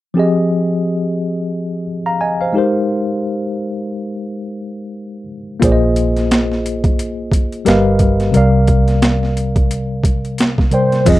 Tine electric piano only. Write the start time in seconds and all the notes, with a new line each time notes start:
0.14 F3 C4 G4 G#4
0.19 D#5
2.06 F5 A#5
2.21 D#5 G#5
2.41 C5 F5
2.53 G#3 D#4 G4
2.57 A#4 C5
5.60 A#3 F4 G#4
5.64 C5 D5
5.72 D#5
7.65 G3 G4 A#4 B4 D#5 F5
8.32 C3 G3 A#4
8.36 D5 F5
10.71 C3 G3 A#4 D5 G5
11.05 F3 C4 F4 G#4 D#5